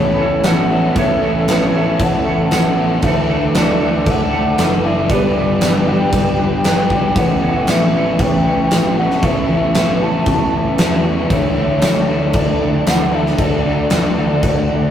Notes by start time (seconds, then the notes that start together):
Already playing: A1 A2 E3 A3 B3 C#4 E4 A4 C#5 E5 B5
0.18 C#4 E4 A4 C#5
0.43 A1 E3 A3 B3 C#4 E4 A4 F#5, snare, tambourine, crash
0.48 C#5
0.70 A3 B3 C#4 E4 A4
0.96 A1 A2 E3 A3 B3 C#4 E4 A4 C#5 E5 A5, kick, crash
1.22 A1 A3 B3 C#4 E4 A4 C#5
1.48 A1 A2 E3 A3 B3 C#4 E4 A4 C#5, snare, tambourine, crash
1.73 A1 A3 C#4 E4 A4 C#5 E5
1.99 A1 B3 F#5, kick, crash
2.26 C#4 E4 A4 C#5
2.51 A1 E3 A3 B3 C#4 E4 A4 C#5 F#5, snare, tambourine, crash
2.77 A3 B3 C#4 E4 A4
3.02 D2 D3 E3 A3 D4 E4 A4 D5 E5 D6, kick, crash
3.07 A4
3.29 D2 A3 D4 E4 A4
3.54 D2 D3 E3 A3 D4 E4 A4 D5, snare, tambourine, crash
3.80 D2 A3 D4 E4 A4
4.06 D2 A3 F#5, kick, crash
4.32 A3 D4 A4
4.57 F#1 E3 A3 D4 E4 A4, snare, tambourine, crash
4.84 A3 E4 A4 E5
5.09 G1 G2 D3 G3 B3 D4 G4 B4 D5 G5, kick, crash
5.35 G1 G3 B3 D4 G4 B4
5.61 G1 G2 D3 G3 B3 D4 G4 B4, snare, tambourine, crash
5.86 G1 G3 B3 D4 G4 B4 G5
6.12 G1 B3, kick, crash
6.38 D4 G4 B4
6.63 G1 G3 B3 D4 G4 B4 G5, snare, tambourine, crash
6.90 G3 B3 D4 G4, kick
7.15 A1 A2 E3 A3 B3 C#4 E4 A4 C#5 E5 F#5 A5 C#6, kick, crash
7.42 A1 A3 B3 C#4 E4 A4 C#5
7.67 A1 A2 E3 A3 B3 C#4 E4 A4 E5, snare, tambourine, crash
7.71 C#5
7.94 A1 A3 C#4 E4 A4 C#5
8.19 A1 B3 G5, kick, crash
8.45 C#4 E4 A4 C#5
8.70 A1 E3 A3 B3 C#4 E4 A4 C#5, snare, tambourine, crash
8.97 A3 B3 C#4 E4 F#5
9.11 snare
9.22 A1 A2 E3 A3 B3 C#4 E4 A4 C#5 E5, kick, crash
9.49 A1 A3 B3 C#4 E4 A4 C#5
9.73 A1 A2 E3 A3 B3 C#4 E4 A4 C#5, snare, tambourine, crash
10.00 A1 A3 C#4 E4 A4 C#5 A5
10.26 A1 B3, kick, crash
10.53 C#4 E4 A4 C#5
10.78 E2 E3 A3 B3 C#4 E4 A4 C#5, snare, tambourine, crash
11.04 A3 B3 C#4 E4
11.29 D2 D3 E3 A3 D4 E4 A4 C#5 A5, kick, crash
11.33 A4 D5
11.56 D2 A3 D4 E4 A4 D5
11.82 D2 D3 E3 A3 D4 E4 A4, snare, tambourine, crash
11.86 D5
12.08 D2 A3 D4 E4 A4 D5
12.33 D2 A3 D5, kick, crash
12.60 A3 D4 A4 D5
12.86 D2 D3 E3 A3 D4 E4 A4 D5 F#5, snare, tambourine, crash
13.12 A3 D4 E4 E5
13.26 snare
13.38 D2 D3 F#3 A3 D4 F#4 D5 F#5, kick, crash
13.64 D2 A3 D4 F#4 D5
13.90 D2 D3 F#3 A3 D4 F#4 D5, snare, tambourine, crash
14.16 D2 A3 D4 F#4 D5
14.43 D2 A3, kick, crash
14.69 A3 D4 F#4 D5